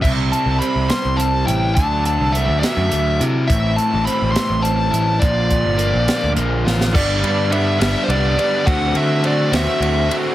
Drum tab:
CC |x-----------|------------|------------|------------|
RD |------------|------------|------------|------------|
HH |--x-x-x-x-x-|x-x-x-x-x-x-|x-x-x-x-x-x-|x-x-x-x-x---|
SD |------o-----|------o-----|------o-----|------o---oo|
BD |o-----------|o-----------|o-----------|o-o---------|

CC |x-----------|------------|
RD |--x-x-x-x-x-|x-x-x-x-x-x-|
HH |------------|------------|
SD |------o-----|------o-----|
BD |o-----------|o-----------|